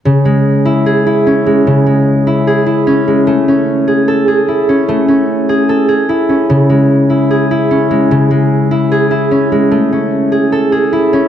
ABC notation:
X:1
M:4/4
L:1/8
Q:1/4=149
K:C#m
V:1 name="Harp"
C, G,2 E G E C G, | C, G,2 E G E C G, | A, C2 G A G E C | A, C2 G A G E C |
C, G,2 E G E C G, | C, G,2 E G E C G, | A, C2 G A G E C |]